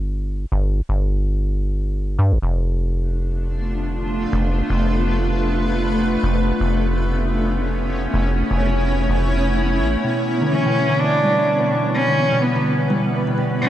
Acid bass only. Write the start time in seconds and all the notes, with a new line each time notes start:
Already playing: G1
0.52 G1
0.89 G1
2.19 G2
2.32 G1
2.42 F1
4.33 F1
4.70 F1
6.23 F1
6.61 F1
8.14 F1
8.51 F1
9.09 F1
9.80 A1